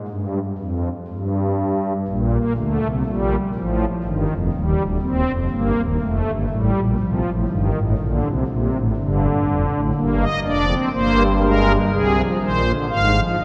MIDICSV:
0, 0, Header, 1, 2, 480
1, 0, Start_track
1, 0, Key_signature, -3, "major"
1, 0, Tempo, 985222
1, 1010, Time_signature, 4, 2, 24, 8
1, 6550, End_track
2, 0, Start_track
2, 0, Title_t, "Pipe organ"
2, 0, Program_c, 0, 19
2, 39, Note_on_c, 0, 43, 67
2, 191, Note_off_c, 0, 43, 0
2, 282, Note_on_c, 0, 41, 63
2, 433, Note_off_c, 0, 41, 0
2, 525, Note_on_c, 0, 43, 69
2, 941, Note_off_c, 0, 43, 0
2, 1011, Note_on_c, 0, 34, 60
2, 1012, Note_on_c, 0, 46, 59
2, 1128, Note_on_c, 0, 58, 66
2, 1160, Note_off_c, 0, 34, 0
2, 1161, Note_off_c, 0, 46, 0
2, 1233, Note_off_c, 0, 58, 0
2, 1252, Note_on_c, 0, 38, 55
2, 1252, Note_on_c, 0, 50, 53
2, 1253, Note_on_c, 0, 57, 64
2, 1354, Note_off_c, 0, 50, 0
2, 1355, Note_off_c, 0, 38, 0
2, 1374, Note_on_c, 0, 36, 54
2, 1374, Note_on_c, 0, 48, 54
2, 1400, Note_off_c, 0, 57, 0
2, 1475, Note_off_c, 0, 36, 0
2, 1475, Note_off_c, 0, 48, 0
2, 1488, Note_on_c, 0, 55, 71
2, 1489, Note_on_c, 0, 46, 58
2, 1490, Note_on_c, 0, 34, 61
2, 1636, Note_off_c, 0, 55, 0
2, 1637, Note_off_c, 0, 34, 0
2, 1637, Note_off_c, 0, 46, 0
2, 1727, Note_on_c, 0, 45, 58
2, 1729, Note_on_c, 0, 33, 58
2, 1730, Note_on_c, 0, 53, 69
2, 1875, Note_off_c, 0, 45, 0
2, 1876, Note_off_c, 0, 33, 0
2, 1876, Note_off_c, 0, 53, 0
2, 1966, Note_on_c, 0, 31, 59
2, 1966, Note_on_c, 0, 43, 62
2, 1966, Note_on_c, 0, 51, 64
2, 2068, Note_off_c, 0, 31, 0
2, 2068, Note_off_c, 0, 43, 0
2, 2083, Note_on_c, 0, 29, 59
2, 2084, Note_on_c, 0, 41, 55
2, 2114, Note_off_c, 0, 51, 0
2, 2187, Note_off_c, 0, 29, 0
2, 2187, Note_off_c, 0, 41, 0
2, 2204, Note_on_c, 0, 39, 54
2, 2204, Note_on_c, 0, 55, 67
2, 2205, Note_on_c, 0, 27, 50
2, 2307, Note_off_c, 0, 27, 0
2, 2307, Note_off_c, 0, 39, 0
2, 2321, Note_on_c, 0, 26, 55
2, 2321, Note_on_c, 0, 38, 51
2, 2352, Note_off_c, 0, 55, 0
2, 2425, Note_off_c, 0, 26, 0
2, 2425, Note_off_c, 0, 38, 0
2, 2440, Note_on_c, 0, 27, 59
2, 2442, Note_on_c, 0, 39, 59
2, 2442, Note_on_c, 0, 60, 75
2, 2545, Note_off_c, 0, 27, 0
2, 2545, Note_off_c, 0, 39, 0
2, 2558, Note_on_c, 0, 41, 55
2, 2560, Note_on_c, 0, 29, 53
2, 2591, Note_off_c, 0, 60, 0
2, 2663, Note_off_c, 0, 41, 0
2, 2665, Note_off_c, 0, 29, 0
2, 2681, Note_on_c, 0, 58, 71
2, 2683, Note_on_c, 0, 31, 61
2, 2684, Note_on_c, 0, 43, 53
2, 2786, Note_off_c, 0, 31, 0
2, 2787, Note_off_c, 0, 43, 0
2, 2803, Note_on_c, 0, 27, 53
2, 2805, Note_on_c, 0, 39, 49
2, 2831, Note_off_c, 0, 58, 0
2, 2907, Note_off_c, 0, 27, 0
2, 2907, Note_off_c, 0, 39, 0
2, 2925, Note_on_c, 0, 41, 61
2, 2926, Note_on_c, 0, 29, 59
2, 2927, Note_on_c, 0, 57, 76
2, 3028, Note_off_c, 0, 41, 0
2, 3029, Note_off_c, 0, 29, 0
2, 3046, Note_on_c, 0, 43, 55
2, 3047, Note_on_c, 0, 31, 55
2, 3075, Note_off_c, 0, 57, 0
2, 3149, Note_off_c, 0, 31, 0
2, 3149, Note_off_c, 0, 43, 0
2, 3164, Note_on_c, 0, 33, 54
2, 3164, Note_on_c, 0, 45, 62
2, 3165, Note_on_c, 0, 55, 67
2, 3268, Note_off_c, 0, 33, 0
2, 3268, Note_off_c, 0, 45, 0
2, 3290, Note_on_c, 0, 34, 58
2, 3290, Note_on_c, 0, 46, 58
2, 3315, Note_off_c, 0, 55, 0
2, 3391, Note_off_c, 0, 34, 0
2, 3391, Note_off_c, 0, 46, 0
2, 3405, Note_on_c, 0, 53, 77
2, 3407, Note_on_c, 0, 36, 64
2, 3407, Note_on_c, 0, 48, 63
2, 3510, Note_off_c, 0, 36, 0
2, 3510, Note_off_c, 0, 48, 0
2, 3528, Note_on_c, 0, 33, 59
2, 3529, Note_on_c, 0, 45, 62
2, 3554, Note_off_c, 0, 53, 0
2, 3631, Note_off_c, 0, 33, 0
2, 3631, Note_off_c, 0, 45, 0
2, 3645, Note_on_c, 0, 31, 55
2, 3646, Note_on_c, 0, 43, 61
2, 3646, Note_on_c, 0, 51, 68
2, 3750, Note_off_c, 0, 31, 0
2, 3750, Note_off_c, 0, 43, 0
2, 3766, Note_on_c, 0, 33, 62
2, 3767, Note_on_c, 0, 45, 64
2, 3796, Note_off_c, 0, 51, 0
2, 3870, Note_off_c, 0, 33, 0
2, 3871, Note_off_c, 0, 45, 0
2, 3886, Note_on_c, 0, 34, 67
2, 3886, Note_on_c, 0, 50, 79
2, 3887, Note_on_c, 0, 46, 67
2, 3990, Note_off_c, 0, 34, 0
2, 3991, Note_off_c, 0, 46, 0
2, 4005, Note_on_c, 0, 36, 60
2, 4008, Note_on_c, 0, 48, 58
2, 4036, Note_off_c, 0, 50, 0
2, 4110, Note_off_c, 0, 36, 0
2, 4111, Note_off_c, 0, 48, 0
2, 4126, Note_on_c, 0, 48, 66
2, 4127, Note_on_c, 0, 34, 61
2, 4127, Note_on_c, 0, 46, 60
2, 4231, Note_off_c, 0, 34, 0
2, 4231, Note_off_c, 0, 46, 0
2, 4246, Note_on_c, 0, 33, 55
2, 4246, Note_on_c, 0, 45, 56
2, 4276, Note_off_c, 0, 48, 0
2, 4350, Note_off_c, 0, 33, 0
2, 4350, Note_off_c, 0, 45, 0
2, 4366, Note_on_c, 0, 31, 67
2, 4366, Note_on_c, 0, 50, 73
2, 4368, Note_on_c, 0, 43, 60
2, 4515, Note_off_c, 0, 31, 0
2, 4516, Note_off_c, 0, 43, 0
2, 4606, Note_on_c, 0, 29, 61
2, 4606, Note_on_c, 0, 41, 60
2, 4709, Note_off_c, 0, 29, 0
2, 4709, Note_off_c, 0, 41, 0
2, 4725, Note_on_c, 0, 45, 62
2, 4726, Note_on_c, 0, 33, 58
2, 4778, Note_off_c, 0, 50, 0
2, 4828, Note_off_c, 0, 45, 0
2, 4829, Note_off_c, 0, 33, 0
2, 4840, Note_on_c, 0, 43, 60
2, 4842, Note_on_c, 0, 31, 64
2, 4843, Note_on_c, 0, 58, 66
2, 4963, Note_on_c, 0, 75, 78
2, 4990, Note_off_c, 0, 43, 0
2, 4991, Note_off_c, 0, 31, 0
2, 4992, Note_off_c, 0, 58, 0
2, 5067, Note_off_c, 0, 75, 0
2, 5084, Note_on_c, 0, 29, 58
2, 5085, Note_on_c, 0, 62, 62
2, 5086, Note_on_c, 0, 41, 62
2, 5086, Note_on_c, 0, 74, 72
2, 5188, Note_off_c, 0, 62, 0
2, 5200, Note_on_c, 0, 60, 67
2, 5232, Note_off_c, 0, 29, 0
2, 5233, Note_off_c, 0, 41, 0
2, 5233, Note_off_c, 0, 74, 0
2, 5304, Note_off_c, 0, 60, 0
2, 5320, Note_on_c, 0, 58, 64
2, 5321, Note_on_c, 0, 72, 80
2, 5323, Note_on_c, 0, 31, 70
2, 5323, Note_on_c, 0, 43, 70
2, 5470, Note_off_c, 0, 58, 0
2, 5470, Note_off_c, 0, 72, 0
2, 5563, Note_on_c, 0, 56, 65
2, 5563, Note_on_c, 0, 70, 80
2, 5711, Note_off_c, 0, 56, 0
2, 5711, Note_off_c, 0, 70, 0
2, 5734, Note_off_c, 0, 43, 0
2, 5735, Note_off_c, 0, 31, 0
2, 5802, Note_on_c, 0, 48, 66
2, 5802, Note_on_c, 0, 55, 71
2, 5803, Note_on_c, 0, 36, 63
2, 5803, Note_on_c, 0, 68, 77
2, 5905, Note_off_c, 0, 55, 0
2, 5925, Note_on_c, 0, 53, 61
2, 5951, Note_off_c, 0, 36, 0
2, 5951, Note_off_c, 0, 48, 0
2, 5952, Note_off_c, 0, 68, 0
2, 6027, Note_off_c, 0, 53, 0
2, 6045, Note_on_c, 0, 51, 57
2, 6047, Note_on_c, 0, 46, 59
2, 6048, Note_on_c, 0, 34, 64
2, 6048, Note_on_c, 0, 72, 76
2, 6148, Note_off_c, 0, 51, 0
2, 6163, Note_on_c, 0, 50, 58
2, 6195, Note_off_c, 0, 46, 0
2, 6196, Note_off_c, 0, 34, 0
2, 6196, Note_off_c, 0, 72, 0
2, 6267, Note_off_c, 0, 50, 0
2, 6281, Note_on_c, 0, 32, 61
2, 6281, Note_on_c, 0, 44, 64
2, 6281, Note_on_c, 0, 51, 66
2, 6281, Note_on_c, 0, 77, 82
2, 6386, Note_off_c, 0, 51, 0
2, 6404, Note_on_c, 0, 53, 58
2, 6432, Note_off_c, 0, 32, 0
2, 6432, Note_off_c, 0, 44, 0
2, 6432, Note_off_c, 0, 77, 0
2, 6509, Note_off_c, 0, 53, 0
2, 6524, Note_on_c, 0, 43, 63
2, 6525, Note_on_c, 0, 31, 65
2, 6525, Note_on_c, 0, 75, 75
2, 6527, Note_on_c, 0, 55, 64
2, 6550, Note_off_c, 0, 31, 0
2, 6550, Note_off_c, 0, 43, 0
2, 6550, Note_off_c, 0, 55, 0
2, 6550, Note_off_c, 0, 75, 0
2, 6550, End_track
0, 0, End_of_file